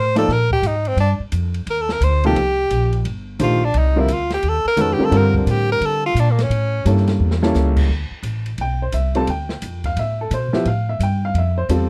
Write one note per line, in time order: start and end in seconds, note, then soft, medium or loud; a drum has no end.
0.00 0.27 A2 medium
0.00 0.17 C5 loud
0.15 0.27 F3 medium
0.15 0.27 A#3 medium
0.15 0.27 D#4 medium
0.15 0.27 A4 medium
0.15 0.34 A4 loud
0.15 0.28 D5 medium
0.15 snare soft
0.15 ride medium
0.28 0.62 A#2 medium
0.28 0.52 A#4 loud
0.28 snare soft
0.51 0.68 G4 loud
0.51 kick medium
0.62 0.96 G#2 medium
0.62 hi-hat pedal medium
0.62 ride medium
0.67 0.89 D#4 medium
0.85 0.99 C4 medium
0.85 ride soft
0.96 1.18 G2 medium
0.96 1.13 D4 medium
0.96 ride medium
1.20 muted upright bass stroke soft
1.32 1.66 F2 medium
1.32 hi-hat pedal medium
1.32 ride medium
1.54 ride soft
1.66 2.00 D#2 medium
1.66 1.83 A#4 medium
1.66 ride medium
1.81 1.94 A4 medium
1.89 2.05 A#4 medium
1.89 snare medium
2.01 2.35 D2 loud
2.01 2.25 C5 medium
2.01 hi-hat pedal medium
2.01 ride medium
2.24 2.35 C3 medium
2.24 2.35 F3 medium
2.24 2.35 A#3 medium
2.24 2.36 D#4 medium
2.24 3.03 G4 medium
2.24 2.36 A4 medium
2.24 ride soft
2.35 2.69 C2 medium
2.35 ride medium
2.70 3.04 A#1 medium
2.70 hi-hat pedal medium
2.70 ride medium
2.93 ride soft
3.05 3.39 G1 medium
3.05 ride medium
3.39 3.73 A#1 medium
3.39 3.59 D#3 medium
3.39 3.59 A3 medium
3.39 3.60 D4 medium
3.39 3.66 F4 medium
3.39 3.60 G4 medium
3.39 3.60 C5 medium
3.39 hi-hat pedal medium
3.39 ride medium
3.65 3.79 D4 medium
3.74 4.08 C2 medium
3.74 ride medium
3.78 4.01 D#4 medium
3.96 4.07 D3 medium
3.96 4.07 G3 medium
3.96 4.08 C4 medium
3.96 4.15 E4 medium
3.96 4.08 F4 medium
3.96 4.08 A#4 medium
4.08 4.42 D2 medium
4.08 hi-hat pedal medium
4.08 ride medium
4.13 4.33 F4 medium
4.30 4.50 G4 medium
4.30 snare medium
4.30 ride soft
4.43 4.64 D#2 medium
4.43 ride medium
4.49 4.67 A4 medium
4.65 4.82 A#4 loud
4.65 muted upright bass stroke soft
4.77 4.98 F2 medium
4.77 4.97 D#3 medium
4.77 4.97 G#3 medium
4.77 4.97 C#4 medium
4.77 4.98 F#4 medium
4.77 4.98 B4 medium
4.77 hi-hat pedal medium
4.77 ride medium
4.81 4.95 A4 loud
4.93 5.06 G4 medium
4.99 5.10 D3 medium
4.99 5.10 G3 medium
4.99 5.10 C4 medium
4.99 5.11 F4 medium
4.99 5.11 A#4 medium
4.99 muted upright bass stroke soft
5.05 5.18 A4 loud
5.11 5.45 G2 medium
5.11 6.08 D3 medium
5.11 6.08 G3 medium
5.11 6.08 C4 medium
5.11 6.09 F4 medium
5.11 6.09 A#4 medium
5.11 ride medium
5.17 5.37 A#4 medium
5.34 5.52 D4 soft
5.34 kick medium
5.46 5.80 A2 medium
5.46 hi-hat pedal medium
5.46 ride medium
5.50 5.71 G4 medium
5.72 5.87 A#4 loud
5.81 6.14 D3 medium
5.81 ride medium
5.85 6.05 A4 loud
6.06 6.21 F4 loud
6.15 6.49 A#2 loud
6.15 hi-hat pedal medium
6.15 ride medium
6.20 6.33 D4 medium
6.31 6.44 A#3 medium
6.39 6.94 C#4 medium
6.39 snare medium
6.39 ride medium
6.50 6.84 A2 medium
6.50 ride medium
6.85 7.19 G2 loud
6.85 7.38 G3 medium
6.85 7.38 A#3 medium
6.85 7.38 C#4 medium
6.85 7.38 E4 medium
6.85 7.38 A4 medium
6.85 hi-hat pedal medium
6.85 ride medium
6.97 snare soft
7.07 snare soft
7.07 ride soft
7.20 7.53 E2 medium
7.31 snare medium
7.42 7.87 G3 medium
7.42 7.87 A#3 medium
7.42 7.87 C#4 medium
7.42 7.87 E4 medium
7.42 7.87 A4 medium
7.42 snare medium
7.54 7.88 C#2 loud
7.54 snare medium
7.54 hi-hat pedal medium
7.76 kick medium
7.76 crash medium
7.89 8.10 D2 medium
8.11 muted upright bass stroke soft
8.23 8.57 A1 medium
8.23 hi-hat pedal medium
8.23 ride medium
8.46 ride soft
8.58 8.92 B1 medium
8.58 8.81 G5 medium
8.58 ride medium
8.82 8.93 C5 medium
8.92 9.26 C2 medium
8.92 9.15 E5 medium
8.92 hi-hat pedal medium
8.92 ride medium
9.15 9.26 G3 medium
9.15 9.26 C4 medium
9.15 9.27 F4 medium
9.15 9.27 A4 medium
9.15 9.28 A5 loud
9.15 ride soft
9.27 9.61 D2 medium
9.27 9.82 G5 medium
9.27 ride medium
9.49 snare soft
9.62 9.96 F2 medium
9.62 hi-hat pedal medium
9.62 ride medium
9.84 9.97 F5 medium
9.84 kick medium
9.84 ride soft
9.96 10.30 A2 medium
9.96 10.20 E5 medium
9.96 ride medium
10.21 10.32 A4 medium
10.31 10.52 B2 loud
10.31 10.54 C5 medium
10.31 hi-hat pedal medium
10.31 ride medium
10.53 10.64 F3 medium
10.53 10.64 B3 medium
10.53 10.64 E4 medium
10.53 10.65 G4 medium
10.53 10.66 E5 medium
10.53 muted upright bass stroke soft
10.53 snare medium
10.65 10.99 A2 medium
10.65 10.88 F5 medium
10.65 ride medium
10.89 11.01 E5 medium
10.99 11.34 G2 medium
10.99 11.23 G5 medium
10.99 hi-hat pedal medium
10.99 ride medium
11.25 11.36 F5 medium
11.34 11.68 F2 medium
11.34 ride medium
11.38 11.58 E5 medium
11.58 11.65 C5 medium
11.69 11.89 E2 loud
11.69 11.89 G3 medium
11.69 11.89 C4 medium
11.69 11.89 F4 medium
11.69 11.89 A4 medium
11.69 hi-hat pedal medium
11.69 ride medium